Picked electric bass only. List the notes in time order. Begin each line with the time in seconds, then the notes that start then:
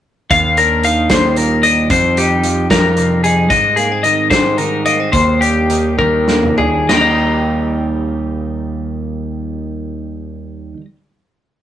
0.30 D#2
1.10 D#2
1.90 F2
2.70 F2
3.50 G#2
4.31 G#2
5.13 D#2
5.99 D#2
6.89 D#2